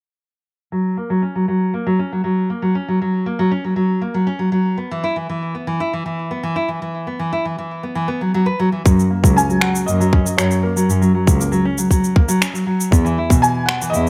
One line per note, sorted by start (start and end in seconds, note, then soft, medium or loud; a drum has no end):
0.72 0.96 F#3 medium
0.97 1.09 A#3 medium
1.10 1.22 F#3 medium
1.22 1.34 C#4 medium
1.35 1.47 F#3 medium
1.48 1.73 F#3 medium
1.74 1.85 A#3 medium
1.87 1.98 F#3 medium
1.99 2.11 C#4 medium
2.12 2.23 F#3 medium
2.24 2.49 F#3 medium
2.50 2.62 A#3 medium
2.62 2.74 F#3 medium
2.75 2.87 C#4 medium
2.88 3.00 F#3 medium
3.02 3.26 F#3 medium
3.26 3.38 A#3 medium
3.39 3.51 F#3 medium
3.51 3.63 C#4 medium
3.64 3.75 F#3 medium
3.76 4.01 F#3 medium
4.01 4.14 A#3 medium
4.14 4.26 F#3 medium
4.27 4.39 C#4 medium
4.39 4.51 F#3 medium
4.52 4.77 F#3 medium
4.78 4.90 B3 medium
4.91 5.03 E3 medium
5.04 5.16 E4 medium
5.16 5.28 E3 medium
5.29 5.54 E3 medium
5.55 5.67 B3 medium
5.67 5.79 E3 medium
5.80 5.92 E4 medium
5.93 6.05 E3 medium
6.06 6.30 E3 medium
6.31 6.43 B3 medium
6.43 6.55 E3 medium
6.56 6.68 E4 medium
6.69 6.81 E3 medium
6.82 7.06 E3 medium
7.07 7.19 B3 medium
7.19 7.32 E3 medium
7.33 7.45 E4 medium
7.45 7.57 E3 medium
7.58 7.83 E3 medium
7.83 7.95 B3 medium
7.95 8.08 E3 loud
8.08 8.20 B3 medium
8.21 8.33 F#3 medium
8.34 8.46 F#3 medium
8.46 8.58 B4 medium
8.60 8.72 F#3 medium
8.72 8.84 E3 medium
8.85 8.95 F#2 medium
8.85 9.10 F#3 medium
8.85 kick loud
8.85 shaker medium
9.00 shaker soft
9.10 9.22 A#3 medium
9.23 9.33 C#2 medium
9.23 9.35 F#3 medium
9.23 kick medium
9.23 shaker medium
9.36 9.48 C#4 medium
9.36 9.63 G#5 loud
9.36 shaker medium
9.49 9.60 F#3 medium
9.49 shaker soft
9.61 9.86 F#3 medium
9.61 9.88 F#5 medium
9.61 finger snap medium
9.75 shaker medium
9.86 10.34 F#2 medium
9.86 9.99 A#3 medium
9.86 10.39 D#5 medium
9.86 shaker soft
10.00 10.12 F#3 medium
10.00 shaker soft
10.13 10.25 C#4 loud
10.13 kick loud
10.26 10.37 F#3 medium
10.26 shaker medium
10.38 10.48 F#2 medium
10.38 10.62 F#3 medium
10.38 10.64 C#5 medium
10.38 finger snap medium
10.38 shaker soft
10.51 shaker soft
10.63 10.76 A#3 medium
10.63 11.11 A#4 medium
10.77 10.88 F#3 medium
10.77 shaker medium
10.90 10.99 F#2 medium
10.90 11.01 C#4 medium
10.90 shaker medium
11.02 11.13 F#3 medium
11.02 shaker soft
11.15 11.39 F#3 medium
11.27 11.37 C#2 medium
11.27 kick loud
11.27 shaker medium
11.39 11.51 A#3 medium
11.39 shaker medium
11.52 11.64 F#3 medium
11.52 shaker soft
11.65 11.77 C#4 loud
11.78 11.89 F#3 medium
11.78 shaker medium
11.91 12.15 F#3 medium
11.91 kick medium
11.91 shaker soft
12.04 shaker soft
12.16 12.28 A#3 medium
12.16 kick medium
12.28 12.40 F#3 medium
12.28 shaker medium
12.41 12.53 C#4 medium
12.41 finger snap medium
12.41 shaker soft
12.53 12.65 F#3 medium
12.53 shaker soft
12.67 12.91 F#3 medium
12.81 shaker medium
12.92 13.02 E2 medium
12.92 13.04 B3 medium
12.92 kick loud
12.92 shaker medium
13.05 13.17 E3 medium
13.05 shaker soft
13.18 13.30 E4 medium
13.30 13.40 B2 medium
13.30 13.42 E3 medium
13.30 kick loud
13.30 shaker medium
13.42 13.68 E3 medium
13.42 13.69 G#5 loud
13.42 shaker soft
13.66 13.80 B3 medium
13.66 13.94 F#5 medium
13.66 finger snap medium
13.82 13.93 E3 loud
13.82 shaker medium
13.90 14.09 D#5 medium
13.94 14.09 E2 medium
13.94 14.06 E4 medium
13.94 shaker medium